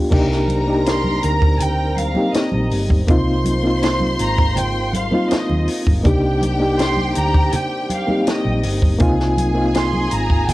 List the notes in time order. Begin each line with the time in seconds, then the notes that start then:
Already playing: B3 D4 F4 G4
0.10 C2 C3 G3 A#3 C4 D4 D#4 G4 A#4 A#5, kick, crash, muted conga, low conga
0.32 snare
0.48 closed hi-hat, high conga
0.66 A#3 D4 D#4 G4
0.86 C6, snare, closed hi-hat
1.04 high conga
1.23 D2 A#5, closed hi-hat
1.42 kick
1.59 G5, closed hi-hat, muted conga, low conga
1.96 F5, closed hi-hat, high conga
2.14 A#3 C4 D#4 G4, high conga
2.33 D#5, snare, closed hi-hat, muted conga
2.52 A#1, high conga
2.70 G1, open hi-hat, muted conga
2.88 kick, high conga
3.07 C2 G#3 A#3 C4 D#4 F4 C5 C6, kick, closed hi-hat, low conga
3.45 closed hi-hat, muted conga, high conga
3.63 A#3 C4 D#4 F4
3.83 C6, snare, closed hi-hat
4.00 high conga
4.19 G#1 A#5, closed hi-hat
4.38 kick
4.56 G5, closed hi-hat, muted conga, low conga
4.93 F5, closed hi-hat, muted conga, high conga
5.11 A#3 C4 D#4 F4, high conga
5.31 D#5, muted fingered electric bass stroke, snare, closed hi-hat
5.49 D#2, high conga
5.68 open hi-hat, muted conga
5.86 G1, kick, high conga
6.03 C2 C3 G3 A#3 C4 D4 D#4 G4 G5, kick, closed hi-hat, low conga
6.41 closed hi-hat, muted conga, high conga
6.59 A#3 D4 D#4 G4
6.79 C6, snare, closed hi-hat, muted conga
6.97 high conga
7.15 D2 A#5, closed hi-hat
7.34 kick
7.52 G5, closed hi-hat, muted conga, low conga
7.90 F5, closed hi-hat, muted conga, high conga
8.07 A#3 C4 D#4 G4, high conga
8.27 D#5, snare, closed hi-hat, muted conga
8.45 A#1, high conga
8.63 G1, open hi-hat, muted conga
8.82 kick, high conga
8.99 C2 G#3 A#3 C4 D#4 F4 G#4 G#5, kick, closed hi-hat, muted conga, low conga
9.20 snare
9.37 closed hi-hat, muted conga, high conga
9.54 A#3 C4 D#4 F4
9.75 C6, snare, closed hi-hat, muted conga
9.93 high conga
10.11 G#1 A#5, closed hi-hat
10.30 kick
10.49 G5, closed hi-hat, low conga